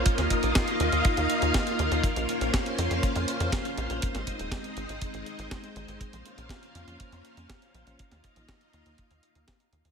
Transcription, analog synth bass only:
\new Staff \with { instrumentName = "Analog synth bass" } { \clef bass \time 4/4 \key bes \minor \tempo 4 = 121 r16 ees,16 r16 bes,,16 r8 ees,16 ees,16 r16 ees,16 r16 ees,16 r8 ees,16 ees,16 | r16 bes,,16 r16 bes,,16 r8 f,16 f,16 r16 f,16 r16 f,16 r8 bes,,16 bes,,16 | r16 aes,,16 r16 ees,,16 r8 aes,,16 aes,,16 r16 aes,,16 r16 aes,,16 r8 aes,,16 aes,,16 | r16 bes,,16 r16 bes,,16 r8 f,16 f,16 r16 f,16 r16 f,16 r8 bes,,16 bes,,16 |
r16 ees,16 r16 bes,,16 r8 ees,16 ees,16 r16 ees,16 r16 ees,16 r8 ees,16 ees,16 | }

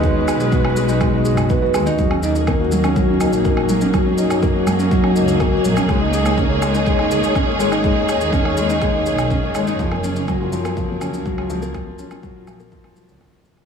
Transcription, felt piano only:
\new Staff \with { instrumentName = "Felt piano" } { \time 4/4 \key dis \phrygian \tempo 4 = 123 gis16 dis'16 gis'16 gis'16 b16 b'16 gis16 dis'16 gis16 dis'16 gis'16 gis'16 b16 b'16 gis16 dis'16 | fis16 cis'16 dis'16 dis'16 ais16 fis'16 fis16 cis'16 fis16 cis'16 dis'16 dis'16 ais16 fis'16 fis16 cis'16 | fis16 cis'16 dis'16 dis'16 ais16 fis'16 fis16 cis'16 fis16 cis'16 dis'16 dis'16 ais16 fis'16 fis16 cis'16 | gis16 dis'16 gis'16 gis'16 cis'16 cis''16 gis16 dis'16 gis16 dis'16 gis'16 gis'16 cis'16 cis''16 gis16 dis'16 |
gis16 dis'16 gis'16 gis'16 cis'16 cis''16 gis16 dis'16 gis16 dis'16 gis'16 gis'16 cis'16 cis''16 gis16 dis'16 | eis16 ais16 cis'16 cis'16 fis16 eis'16 eis16 ais16 eis16 ais16 cis'16 cis'16 fis16 eis'16 eis16 ais16 | eis16 ais16 cis'16 cis'16 fis16 eis'16 eis16 ais16 eis16 ais16 fis16 fis'16 ais16 eis16 ais16 ais'16 | }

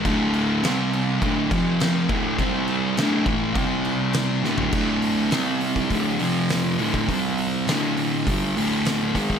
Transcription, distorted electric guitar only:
\new Staff \with { instrumentName = "Distorted electric guitar" } { \clef bass \time 4/4 \key c \lydian \tempo 4 = 102 <d, a, d>4 <c g c'>4 <d, a, d>8 <f, c f>4 <d, a, d>8 | <c g c'>4 <d, a, d>8 <a, e a>8 <c g c'>4. <d, a, d>8 | <d, a, d>4 <c g c'>4 <d, a, d>8 <f, c f>4 <d, a, d>8 | <c g c'>4 <d, a, d>4 <g, d g>8 <d, a, d>4 <gis, ees gis>8 | }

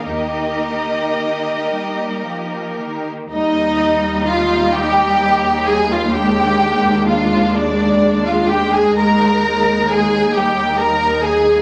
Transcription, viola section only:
\new Staff \with { instrumentName = "Viola section" } { \time 6/8 \key ees \major \tempo 4. = 43 << { ees'2. | ees'2. | d'2. | ees'2. | } \\ { bes2. | g2. | aes2.~ | aes4. g4. | } >> }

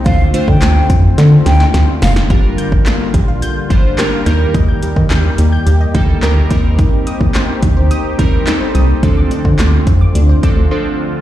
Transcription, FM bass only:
\new Staff \with { instrumentName = "FM bass" } { \clef bass \time 4/4 \key g \minor \tempo 4 = 107 d,8 r16 d16 d,8 f,8 d8 d,8 d,16 r16 f,,8 | g,,8 r16 g,,16 r8 bes,,8. r16 g,,8 r8 ees,8 | ees,8 r16 ees16 ees,8 ees,8 ees,8 d,8 d,8 ees,8~ | ees,8 r16 ees,16 r8 d,8. r16 ees,8 r8 c,8 |
d,8 r16 d16 d,8 f,8 d,8 d,16 d,16 r4 | }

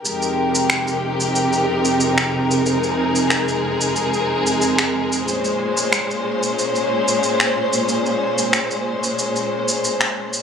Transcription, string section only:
\new Staff \with { instrumentName = "String section" } { \time 4/4 \key f \minor \tempo 4 = 92 << { <f, c aes ees' bes'>1~ | <f, c aes ees' bes'>1 | <bes, c''>1~ | <bes, c''>1 | } \\ { g'1 | aes'1 | des'1~ | des'1 | } >> }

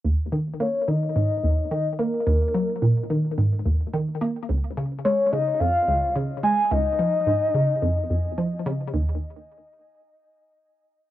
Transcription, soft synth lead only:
\new Staff \with { instrumentName = "Soft synth lead" } { \time 4/4 \key des \mixolydian \tempo 4 = 108 r4 des''8 ees''4. ees''8 bes'8~ | bes'2~ bes'8 r4. | r4 des''8 ees''8 f''4 r8 aes''8 | ees''2. r4 |
r1 | }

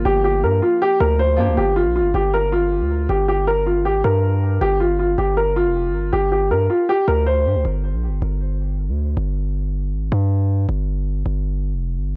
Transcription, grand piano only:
\new Staff \with { instrumentName = "Grand piano" } { \time 4/4 \key g \minor \tempo 4 = 158 g'8 g'8 bes'8 f'8 g'8 bes'8 c''4 | g'8 f'8 f'8 g'8 bes'8 f'4. | g'8 g'8 bes'8 f'8 g'8 bes'4. | g'8 f'8 f'8 g'8 bes'8 f'4. |
g'8 g'8 bes'8 f'8 g'8 bes'8 c''4 | r1 | r1 | r1 | }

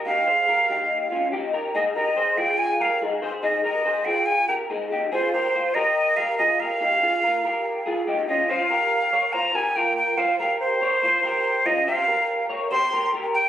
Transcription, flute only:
\new Staff \with { instrumentName = "Flute" } { \time 4/4 \key bes \dorian \tempo 4 = 142 f''2. r4 | ees''8 ees''4 g''8 aes''8 f''8 r4 | ees''8 ees''4 g''8 aes''8 g''8 r4 | c''8 c''4 ees''4 f''8 ees''8 f''8~ |
f''2. r8 ees''8 | f''2 bes''8 aes''8 g''8 g''8 | f''8 f''8 c''2~ c''8 ees''8 | f''4. r8 c'''4 r8 g''8 | }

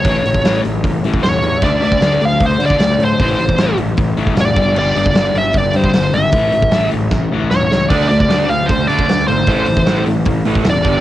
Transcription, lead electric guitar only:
\new Staff \with { instrumentName = "Lead electric guitar" } { \time 4/4 \key a \phrygian \tempo 4 = 153 cis''4. r4. cis''4 | d''8 d''4 f''8 c''8 d''4 c''8~ | c''4. r4. d''4 | d''8 d''4 e''8 d''8 c''4 e''8~ |
e''4. r4. cis''4 | d''8 d''4 f''8 c''8 d''4 c''8~ | c''4. r4. d''4 | }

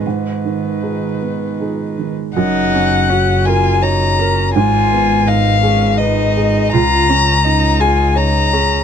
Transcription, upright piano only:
\new Staff \with { instrumentName = "Upright piano" } { \time 3/4 \key gis \dorian \tempo 4 = 82 gis,8 dis8 <dis' gis'>8 b8 <dis' gis'>8 dis8 | fis,8 cis'8 fis'8 ais'8 cis''8 ais'8 | gis,8 b8 dis'8 gis'8 b'8 gis'8 | cis,8 cis'8 dis'8 gis'8 cis''8 gis'8 | }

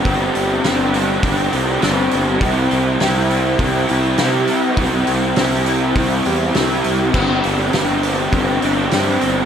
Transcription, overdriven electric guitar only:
\new Staff \with { instrumentName = "Overdriven electric guitar" } { \time 4/4 \key c \major \tempo 4 = 101 <g, d g c' d' g'>4 <g c' d' g'>4 <g, d g c' d' g'>8 <g c' d' g'>8 <g c' d' g'>4 | <c g c' e' g'>4 <g c' e' g'>4 <c g c' e' g'>8 <c' e' g'>8 <g c' e' g'>4 | <c g c' e' g'>4 <g c' e' g'>4 <c g c' e' g'>8 <c' e' g'>8 <g c' e' g'>4 | <g, d g c' d' g'>4 <g c' d' g'>4 <g, d g c' d' g'>8 <g c' d' g'>8 <g c' d' g'>4 | }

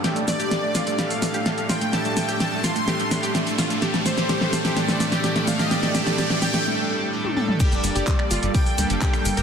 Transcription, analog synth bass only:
\new Staff \with { instrumentName = "Analog synth bass" } { \clef bass \time 4/4 \key d \phrygian \tempo 4 = 127 r16 a,,16 a,,16 a,,16 r8 a,,16 a,,16 r8 f,16 a,,16 r8 a,,16 a,,16 | r16 a,,16 a,,16 a,16 r8 a,,16 a,,16 r8 a,16 g,,16 r8 a,,16 a,,16 | r8 a,,16 a,,16 r8 a,,16 r8. f,16 a,,16 r4 | r8. a,16 r8 a,,16 r2 r16 |
r16 g,,16 g,,16 g,,16 r8 g,,16 g,,16 r8 d,16 g,,16 r8 g,,16 g,,16 | }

